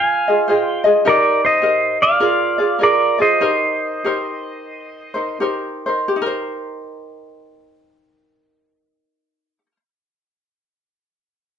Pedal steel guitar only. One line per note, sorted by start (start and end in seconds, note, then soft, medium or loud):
0.00 0.83 F5 medium
0.00 0.55 G#5 medium
0.55 0.83 G5 medium
1.08 1.41 A#4 medium
1.08 1.45 D5 loud
1.45 1.97 C5 medium
1.45 2.04 D#5 medium
2.02 2.78 D5 medium
2.02 2.84 F5 loud
2.83 3.18 A#4 medium
2.83 3.21 D5 medium
3.22 5.38 C5 medium
3.22 5.38 D#5 medium